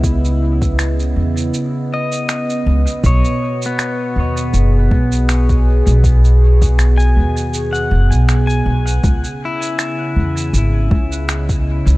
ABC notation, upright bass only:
X:1
M:4/4
L:1/16
Q:"Swing 16ths" 1/4=80
K:C#m
V:1 name="Upright bass" clef=bass
C,,6 E,,2 z6 C,, z | B,,, z4 z D,,2 F,,,2 B,,,4- B,,, B,,,- | B,,,6 D,,4 F,,, B,,,3 B,,,2 | C,, z4 z E,,2 G,,,2 C,,4- C,, C,, |]